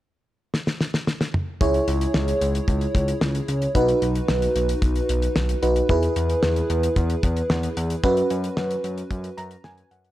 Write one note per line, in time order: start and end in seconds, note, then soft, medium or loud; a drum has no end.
0.54 snare medium
0.67 snare medium
0.81 snare medium
0.94 snare medium
1.07 snare medium
1.21 snare medium
1.34 mid tom medium
1.61 1.80 C#2 loud
1.61 3.71 E4 medium
1.61 3.71 G#4 medium
1.61 3.71 C#5 medium
1.61 kick loud
1.61 closed hi-hat medium
1.74 closed hi-hat medium
1.88 2.06 C#2 loud
1.88 closed hi-hat medium
2.01 closed hi-hat medium
2.14 2.33 C#2 loud
2.14 snare loud
2.28 closed hi-hat medium
2.41 2.60 C#2 loud
2.41 closed hi-hat medium
2.55 closed hi-hat medium
2.68 2.87 C#2 loud
2.68 kick medium
2.68 closed hi-hat medium
2.81 closed hi-hat soft
2.95 3.13 C#2 loud
2.95 kick medium
2.95 closed hi-hat medium
3.08 closed hi-hat medium
3.21 3.40 C#2 loud
3.21 snare loud
3.35 closed hi-hat medium
3.48 3.67 C#2 loud
3.48 closed hi-hat medium
3.62 closed hi-hat soft
3.75 3.94 B1 loud
3.75 5.59 D#4 medium
3.75 5.59 F#4 medium
3.75 5.59 B4 medium
3.75 kick loud
3.75 closed hi-hat medium
3.88 closed hi-hat medium
4.02 4.21 B1 loud
4.02 closed hi-hat medium
4.15 closed hi-hat medium
4.28 4.47 B1 loud
4.28 snare loud
4.42 closed hi-hat medium
4.55 4.74 B1 loud
4.55 closed hi-hat medium
4.69 closed hi-hat medium
4.82 5.01 B1 loud
4.82 kick medium
4.82 closed hi-hat medium
4.96 closed hi-hat soft
5.09 5.28 B1 loud
5.09 closed hi-hat medium
5.22 closed hi-hat medium
5.36 5.55 B1 medium
5.36 snare loud
5.49 closed hi-hat medium
5.62 5.81 B1 loud
5.62 5.89 D#4 medium
5.62 5.89 F#4 soft
5.62 5.88 B4 medium
5.62 closed hi-hat medium
5.76 closed hi-hat medium
5.89 6.08 E2 loud
5.89 8.00 E4 medium
5.89 8.00 G#4 medium
5.89 8.00 B4 medium
5.89 kick loud
5.89 closed hi-hat medium
6.03 closed hi-hat medium
6.16 6.35 E2 loud
6.16 closed hi-hat medium
6.30 closed hi-hat medium
6.43 6.62 E2 loud
6.43 snare loud
6.56 closed hi-hat medium
6.70 6.88 E2 loud
6.70 closed hi-hat medium
6.83 closed hi-hat medium
6.96 7.15 E2 loud
6.96 kick medium
6.96 closed hi-hat medium
7.10 closed hi-hat medium
7.23 7.42 E2 loud
7.23 kick loud
7.23 closed hi-hat medium
7.37 closed hi-hat medium
7.50 7.69 E2 loud
7.50 snare loud
7.63 closed hi-hat medium
7.77 7.96 E2 loud
7.77 closed hi-hat medium
7.90 closed hi-hat soft
8.04 8.22 F#2 loud
8.04 10.12 C#4 medium
8.04 10.12 F#4 medium
8.04 10.12 B4 medium
8.04 kick loud
8.04 closed hi-hat medium
8.17 closed hi-hat medium
8.30 8.49 F#2 loud
8.30 closed hi-hat medium
8.44 closed hi-hat medium
8.57 8.76 F#2 loud
8.57 snare loud
8.71 closed hi-hat medium
8.84 9.03 F#2 loud
8.84 closed hi-hat medium
8.98 closed hi-hat medium
9.11 9.29 F#2 loud
9.11 kick medium
9.11 closed hi-hat medium
9.24 closed hi-hat soft
9.37 9.56 F#2 loud
9.37 9.62 A#5 medium
9.37 closed hi-hat medium
9.51 closed hi-hat medium
9.64 9.83 F#2 loud
9.64 9.89 G#5 medium
9.64 snare loud
9.78 closed hi-hat medium
9.91 10.10 F#2 loud
9.91 10.12 F#5 medium
9.91 closed hi-hat medium
10.04 closed hi-hat medium